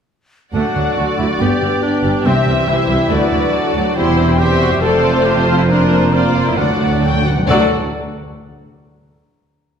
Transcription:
0.53 cello section D2, double bass section D2, trombone section D3 F#3, viola section A3 F#4, cor anglais D4, french horn section D4, clarinet A4, violin section D5 F#5, flute F#5
0.75 double bass section D2, cello section D2, viola section F#3
0.96 cello section D2, double bass section D2, viola section D3, cor anglais F#4, french horn section F#4, violin section D5
1.18 cello section D2, double bass section D2, viola section F#3, cor anglais E4, french horn section E4
1.28 french horn section F#4, cor anglais F#4
1.40 double bass section G1, cello section G2, trombone section B3, viola section B3 G4, french horn section G4, cor anglais G4, clarinet B4, flute G5
1.61 double bass section G1, cello section G2, viola section G3
1.83 cor anglais D4, french horn section D4
2.03 double bass section G1, cello section G2, viola section G3
2.24 cello section C2, double bass section C2, trombone section E3 G3, cor anglais C4, viola section C4, french horn section C4, violin section E5, clarinet E5
2.46 cello section C2, double bass section C2, viola section G3
2.68 cello section C2, double bass section C2, viola section E3, french horn section E4, cor anglais E4, violin section C5
2.88 cello section C2, double bass section C2, viola section G3
3.10 cello section D2, double bass section D2, trombone section D3 F#3, viola section A3 F#4, violin section B4 D5, clarinet D5, flute F#5
3.32 cello section D2, double bass section D2, viola section F#3
3.53 violin section A4
3.75 double bass section D2, cello section D2, viola section F#3
3.95 double bass section E1, cello section E2, trombone section C3 G3, viola section C4 G4, french horn section E4, cor anglais E4, clarinet C5, violin section C5, flute G5
4.39 trombone section C3 G3, viola section C4 G4, cor anglais G4, french horn section G4, violin section C5 E5
4.61 cor anglais F#4, french horn section F#4
4.71 cor anglais G4, french horn section G4
4.82 double bass section F1, cello section F2, trombone section C3 A3, viola section C4 F4, french horn section A4, cor anglais A4, violin section C5 D5, flute A5
5.25 cor anglais G4, french horn section G4, violin section C5
5.46 french horn section F4, cor anglais F4
5.57 cor anglais E4, french horn section E4
5.68 trombone section C3 A#3, viola section A#3 F4, french horn section D4, cor anglais D4, violin section A#4 C5, flute A#5
6.13 trombone section C3 A#3, viola section A#3 F4, cor anglais F4, french horn section F4, violin section C5 D5
6.34 trombone section A#2, french horn section F4, cor anglais F4
6.47 cor anglais E4, french horn section E4
6.57 cello section D2, double bass section D2, trombone section A2 F#3, viola section A3 F#4, french horn section D4, cor anglais D4, clarinet A4, violin section D5 F#5, flute F#5
6.66 timpani D3
6.74 timpani D3
6.81 timpani D3
6.90 timpani D3
6.98 timpani D3
7.03 timpani D3, violin section G5
7.13 timpani D3
7.22 timpani D3
7.26 timpani D3, violin section F#5
7.38 timpani D3
7.49 cello section D2, double bass section D2, trombone section A2 F#3, timpani D3, cor anglais F#3, french horn section D4, viola section F#4, violin section A4 D5, clarinet A4, flute F#5

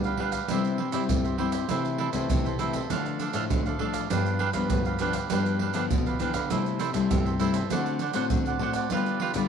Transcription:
Already playing: nylon-string guitar D3 G3 D4 F4 B4
0.04 cavaquinho G4 B4 F5, pandeiro, maracas, surdo
0.17 nylon-string guitar D4 F4 B4, cavaquinho D4 G4 B4 F5, pandeiro
0.32 cavaquinho G4 B4 F5, pandeiro, maracas, surdo
0.48 nylon-string guitar C3 G3 C4 E4, cavaquinho E4 G4 C5 E5, pandeiro, maracas, surdo
0.64 pandeiro, maracas
0.78 cavaquinho E4 G4 C5 E5, pandeiro
0.92 nylon-string guitar G3 C4 E4, cavaquinho E4 G4 C5 E5, pandeiro, maracas
1.09 nylon-string guitar G2 C3, pandeiro, maracas, surdo
1.24 cavaquinho G4 C5 E5, pandeiro, maracas
1.38 nylon-string guitar G3 C4 E4, cavaquinho E4 G4 C5 E5, pandeiro
1.52 cavaquinho G4 C5 E5, pandeiro, maracas, surdo
1.69 nylon-string guitar C3 E3 A3 E4, cavaquinho E4 A4 C5 E5, pandeiro, maracas, surdo
1.85 pandeiro, maracas
1.98 cavaquinho E4 A4 C5 E5, pandeiro
2.13 nylon-string guitar C3 E3 A3 E4, cavaquinho A4 C5 E5, pandeiro, maracas, surdo
2.30 nylon-string guitar C3, pandeiro, maracas, surdo
2.45 cavaquinho A4 C5 E5, pandeiro, maracas, surdo
2.59 nylon-string guitar E3 A3 E4, cavaquinho E4 A4 C5 E5, pandeiro, maracas
2.73 cavaquinho A4 C5 E5, pandeiro, maracas, surdo
2.90 nylon-string guitar D3 F3 A3 D4, cavaquinho D4 A4 D5 F5, pandeiro, maracas, surdo
3.06 pandeiro, maracas
3.19 cavaquinho D4 A4 D5 F5, pandeiro, maracas
3.33 nylon-string guitar A2 F3 A3 D4, cavaquinho D4 A4 D5 F5, pandeiro, maracas
3.50 nylon-string guitar A2 D3, pandeiro, maracas, surdo
3.66 cavaquinho A4 D5 F5, pandeiro, maracas
3.79 nylon-string guitar F3 A3 D4, cavaquinho D4 A4 D5 F5, pandeiro
3.93 cavaquinho A4 D5 F5, pandeiro, maracas, surdo
4.10 nylon-string guitar G2 F3 B3 D4, cavaquinho D4 G4 B4 F5, pandeiro, maracas, surdo
4.26 pandeiro, maracas
4.39 cavaquinho D4 G4 B4 F5, pandeiro
4.54 nylon-string guitar G2 F3 B3 D4, cavaquinho G4 B4 F5, pandeiro, maracas, surdo
4.70 nylon-string guitar G2 D3, pandeiro, maracas, surdo
4.85 cavaquinho G4 B4 F5, pandeiro, maracas, surdo
4.99 nylon-string guitar F3 B3 D4, cavaquinho D4 G4 B4 F5, pandeiro, maracas
5.13 cavaquinho G4 B4 F5, pandeiro, maracas, surdo
5.30 nylon-string guitar G2 F3 G3 B3 D4, cavaquinho D4 G4 B4 F5, pandeiro, maracas, surdo
5.46 pandeiro, maracas
5.59 cavaquinho D4 G4 B4 F5, pandeiro
5.74 nylon-string guitar D3 F3 B3 D4, cavaquinho D4 G4 B4 F5, pandeiro, maracas
5.91 nylon-string guitar B2 D3, pandeiro, maracas, surdo
6.06 cavaquinho G4 B4 F5, pandeiro, maracas
6.19 nylon-string guitar E3 F3 B3 D4, cavaquinho D4 G4 B4 F5, pandeiro, maracas
6.34 nylon-string guitar D3, cavaquinho G4 B4 F5, pandeiro, maracas, surdo
6.50 nylon-string guitar C3 G3 A3 E4, cavaquinho E4 A4 C5 E5, pandeiro, maracas, surdo
6.66 pandeiro, maracas
6.79 cavaquinho E4 A4 C5 E5, pandeiro, maracas
6.94 nylon-string guitar C3 G3 A3 E4, cavaquinho A4 C5 E5, pandeiro, maracas, surdo
7.10 nylon-string guitar G2 C3, pandeiro, maracas, surdo
7.25 cavaquinho A4 C5 E5, pandeiro, maracas, surdo
7.39 nylon-string guitar G3 A3 E4, cavaquinho E4 A4 C5 E5, pandeiro, maracas
7.53 cavaquinho A4 C5 E5, pandeiro, maracas, surdo
7.70 nylon-string guitar D3 A3 C4 F#4, cavaquinho D4 C5 D5 F#5, pandeiro, maracas, surdo
7.86 pandeiro, maracas
7.99 cavaquinho D4 C5 D5 F#5, pandeiro, maracas
8.13 nylon-string guitar A2 A3 C4 F#4, cavaquinho D4 C5 D5 F#5, pandeiro, maracas
8.30 nylon-string guitar A2 D3, pandeiro, maracas, surdo
8.46 cavaquinho C5 D5 F#5, pandeiro, maracas
8.59 nylon-string guitar A3 C4 F#4, cavaquinho D4 C5 D5 F#5, pandeiro
8.73 cavaquinho D5 F#5, pandeiro, maracas, surdo
8.78 cavaquinho C5
8.90 nylon-string guitar D3 G3 B3 F4, cavaquinho F4 G4 B4, pandeiro, maracas, surdo
8.95 cavaquinho D5
9.06 pandeiro, maracas
9.20 cavaquinho F4 G4 B4 D5, pandeiro
9.34 nylon-string guitar D3 G3 B3 F4, cavaquinho B4 D5, pandeiro, maracas, surdo
9.38 cavaquinho G4

